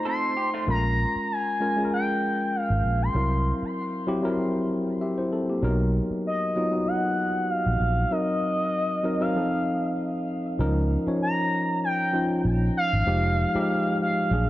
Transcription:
Already playing: tine electric piano A3 D#4 F4 C5
0.05 clean electric guitar C4 A4, analog synth lead C6
0.37 clean electric guitar G4
0.54 clean electric guitar A3 F4
0.67 fingered electric bass A#1, tine electric piano G#3 C#4 F4 A#4, analog synth lead A#5
1.16 muted fingered electric bass stroke
1.32 analog synth lead G#5
1.60 tine electric piano G#3 C#4 F4 A#4
1.77 tine electric piano G#3 C#4 F4 G#4
1.85 tine electric piano A#4
1.94 analog synth lead G5
2.56 analog synth lead F5
2.70 fingered electric bass G#1
2.84 fingered electric bass A#1
3.02 analog synth lead C6
3.14 fingered electric bass C2, tine electric piano F#3 C4 E4 A#4
3.63 muted fingered electric bass stroke
4.07 tine electric piano F#3 C4 E4 G4
4.23 tine electric piano F#3 C4 E4 A#4
5.01 tine electric piano G4 E5
5.18 tine electric piano E4 C5
5.33 tine electric piano C4 A4
5.50 tine electric piano A#3 G4
5.63 fingered electric bass B1, tine electric piano F#3 B3 D#4 A#4
6.10 muted fingered electric bass stroke
6.27 analog synth lead D#5
6.56 tine electric piano F#3 B3 D#4 F4
6.72 tine electric piano F#3 B3 D#4 F#4
6.88 analog synth lead F#5
7.50 analog synth lead F5
7.66 fingered electric bass A#1
7.80 fingered electric bass A#1
8.11 tine electric piano F#3 C4 D#4 A#4, analog synth lead D#5
9.03 tine electric piano F#3 C4 D#4 A#4
9.20 tine electric piano F#3 C4 D#4 A#4, analog synth lead F5
9.36 tine electric piano F3 C4 D#4 A4
10.59 fingered electric bass C#2, tine electric piano F3 C#4 D#4 A#4
11.07 tine electric piano F3 C#4 D#4 C#5, muted fingered electric bass stroke
11.22 analog synth lead A#5
11.84 analog synth lead G5
12.13 tine electric piano F3 C#4 D#4 F4
12.45 fingered electric bass A#1
12.77 analog synth lead F5
12.93 fingered electric bass G#1
13.06 fingered electric bass F1, tine electric piano F3 G#3 D#4 G4
13.54 tine electric piano F3 G#3 D#4 G4, muted fingered electric bass stroke
14.02 analog synth lead F5
14.31 fingered electric bass A#1, tine electric piano F#3 A#3 D4 G#4

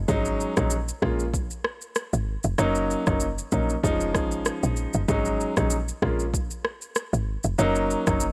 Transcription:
0.08 log drum bass G#1, grand piano F#3 G#3 C#4 D#4, kick, shaker
0.25 shaker
0.41 shaker
0.57 log drum bass A#1, grand piano F#3 G#3 C#4 D#4, kick, cross-stick, shaker
0.70 shaker
0.88 shaker
1.02 log drum bass A#1, grand piano G#3 A#3 C#4 F4, kick, cross-stick
1.19 shaker
1.34 kick, shaker
1.51 shaker
1.64 cross-stick
1.81 shaker
1.95 cross-stick, shaker
2.13 log drum bass G#1, shaker
2.43 log drum bass F1, shaker
2.58 log drum bass F#1, grand piano F#3 A#3 C#4 D#4, cross-stick, shaker
2.75 shaker
2.90 shaker
3.07 log drum bass F#1, grand piano F#3 A#3 C#4 D#4, kick, cross-stick, shaker
3.20 shaker
3.38 shaker
3.52 log drum bass A#1, grand piano F#3 A#3 C#4 D#4, kick, shaker
3.69 shaker
3.83 log drum bass F1, grand piano F3 G#3 C#4 D#4, kick, shaker
4.01 shaker
4.15 log drum bass G#1, kick, cross-stick, shaker
4.32 shaker
4.45 cross-stick, shaker
4.63 log drum bass A#1, shaker
4.76 shaker
4.93 log drum bass F#1, shaker
5.08 log drum bass G#1, grand piano F#3 G#3 C#4 D#4, kick, shaker
5.25 shaker
5.40 shaker
5.57 log drum bass A#1, grand piano F#3 G#3 C#4 D#4, kick, cross-stick, shaker
5.70 shaker
5.88 shaker
6.02 log drum bass A#1, grand piano G#3 A#3 C#4 F4, kick, cross-stick
6.20 shaker
6.34 kick, shaker
6.51 shaker
6.65 cross-stick
6.81 shaker
6.95 cross-stick, shaker
7.13 log drum bass G#1, shaker
7.43 log drum bass F1, shaker
7.58 log drum bass F#1, grand piano F#3 A#3 C#4 D#4, shaker
7.75 shaker
7.91 shaker
8.07 log drum bass F#1, grand piano F#3 A#3 C#4 D#4, kick, cross-stick, shaker
8.20 shaker

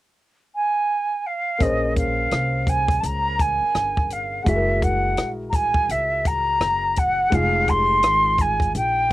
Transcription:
0.55 flute G#5
1.26 flute F5
1.58 upright bass A#1, grand piano A#3 C#4 G#4, flute D#5, kick, closed hi-hat
1.63 grand piano C5
1.96 flute F5, kick, closed hi-hat
2.31 upright bass C2, cross-stick, closed hi-hat
2.67 flute G#5, kick, closed hi-hat
2.88 kick, closed hi-hat
3.00 upright bass C#2, flute A5, closed hi-hat
3.05 flute A#5
3.39 flute G#5, kick, closed hi-hat
3.62 muted upright bass stroke
3.75 upright bass G1, cross-stick, closed hi-hat
3.97 kick
4.10 flute F5, closed hi-hat
4.42 grand piano G#3 E4, flute F#5
4.46 upright bass F#1, grand piano F#4 G#4, flute E5, kick, closed hi-hat
4.56 grand piano A#4
4.82 flute F#5, kick, closed hi-hat
5.17 upright bass A#1, cross-stick, closed hi-hat
5.49 flute A#5, kick
5.53 flute G#5, closed hi-hat
5.74 kick
5.89 upright bass C#2, flute E5, closed hi-hat
6.25 flute A#5, kick, closed hi-hat
6.61 upright bass F#1, cross-stick, closed hi-hat
6.96 flute F#5, kick, closed hi-hat
7.30 upright bass F1, grand piano G#3 D#4 F4, flute F5, kick, closed hi-hat
7.35 grand piano G#4
7.68 flute C6, kick, closed hi-hat
8.03 upright bass G#1, cross-stick, closed hi-hat
8.38 flute G#5, kick, closed hi-hat
8.60 kick, closed hi-hat
8.75 upright bass A#1, flute G5, closed hi-hat

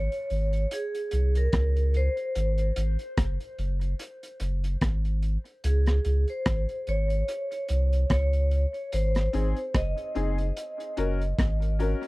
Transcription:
Already playing: vibraphone C#5
0.12 closed hi-hat
0.30 sub bass G#1, closed hi-hat
0.53 closed hi-hat
0.71 vibraphone G#4, closed hi-hat
0.95 closed hi-hat
1.11 sub bass C2, closed hi-hat
1.35 vibraphone A#4, closed hi-hat
1.53 sub bass C#2, kick, cross-stick, closed hi-hat
1.76 closed hi-hat
1.94 vibraphone C5, closed hi-hat
2.17 closed hi-hat
2.35 sub bass G#1, closed hi-hat
2.58 closed hi-hat
2.76 sub bass G#1, closed hi-hat
2.99 closed hi-hat
3.17 sub bass F#1, kick, cross-stick, closed hi-hat
3.40 closed hi-hat
3.59 sub bass F#1, closed hi-hat
3.81 closed hi-hat
3.99 closed hi-hat
4.23 closed hi-hat
4.40 sub bass F#1, closed hi-hat
4.64 closed hi-hat
4.81 sub bass G#1, kick, cross-stick, closed hi-hat
5.05 closed hi-hat
5.23 closed hi-hat
5.45 closed hi-hat
5.64 sub bass C#2, vibraphone G#4, closed hi-hat
5.86 cross-stick, closed hi-hat
6.05 sub bass C#2, closed hi-hat
6.28 vibraphone C5, closed hi-hat
6.46 sub bass G#1, kick, cross-stick, closed hi-hat
6.69 closed hi-hat
6.87 sub bass G#1, vibraphone C#5, closed hi-hat
7.10 closed hi-hat
7.28 closed hi-hat
7.52 closed hi-hat
7.68 sub bass C2, closed hi-hat
7.93 closed hi-hat
8.10 sub bass C#2, vibraphone C#5, kick, cross-stick, closed hi-hat
8.33 closed hi-hat
8.51 closed hi-hat
8.74 closed hi-hat
8.92 sub bass G#1, vibraphone C5, closed hi-hat
9.15 cross-stick, closed hi-hat
9.33 sub bass G#1, upright piano C4 D#4 G#4, closed hi-hat
9.56 closed hi-hat
9.74 sub bass F#1, vibraphone D#5, kick, cross-stick, closed hi-hat
9.97 closed hi-hat
10.15 sub bass F#1, upright piano C4 D#4 G#4, closed hi-hat
10.38 upright piano D#4 G#4, closed hi-hat
10.57 closed hi-hat
10.80 closed hi-hat
10.97 sub bass F#1, upright piano C#4 F#4 A#4, closed hi-hat
11.21 closed hi-hat
11.38 sub bass G#1, kick, cross-stick, closed hi-hat
11.62 closed hi-hat
11.79 upright piano C#4 F#4 A#4, closed hi-hat
12.03 closed hi-hat

